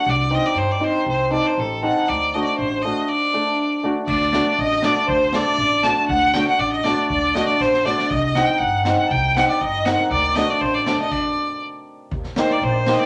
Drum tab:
CC |--------|--------|--------|--------|
SD |--------|--------|--------|--------|
BD |--------|--------|--------|--------|

CC |x-------|--------|--------|--------|
SD |-oo--oo-|-oo---o-|--o---o-|-oo-oooo|
BD |o---o---|o---o---|o---o---|o---o---|

CC |--------|--------|--------|x-------|
SD |--o---o-|--oo--o-|--o---o-|--------|
BD |o---o---|o---o---|o---o---|o-------|

CC |--------|
SD |-ooo--o-|
BD |o---o---|